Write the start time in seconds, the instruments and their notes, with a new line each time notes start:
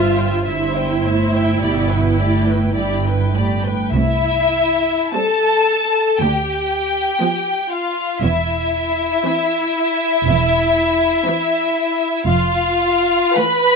Already playing: double bass section G1, cello section G2, viola section F4, violin section C5 E5
0.15 violin section C5 E5 G5
0.44 double bass section G1, cello section G2, viola section E4, violin section C5 E5
0.74 violin section C5 E5 G5
1.04 cello section A2, violin section C5 E5
1.33 violin section C5 E5 G5
1.61 double bass section G1, cello section B2, violin section G4 D5 B5
1.89 violin section B4 G5
2.19 cello section A2, violin section G4 D5 B5
2.44 violin section G5
2.48 violin section B4
2.75 double bass section G1, cello section G2, violin section G4 D5 B5
3.05 violin section B4 G5
3.35 cello section A2, violin section G4 D5 B5
3.63 violin section B4 G5
3.92 double bass section C2, cello section C2, violin section E4 E5
5.12 viola section G3 C4, violin section A4 A5
6.20 cello section D2, double bass section D2, violin section G4 G5
7.21 viola section F3 B3
7.70 violin section F4 F5
8.21 double bass section E1, cello section E2, violin section E4 E5
9.24 viola section E3 C4
10.24 double bass section E1, cello section E2
11.26 viola section E3 C4
12.25 double bass section F1, cello section F2, violin section F4 F5
13.37 viola section E3 A3, violin section B4 B5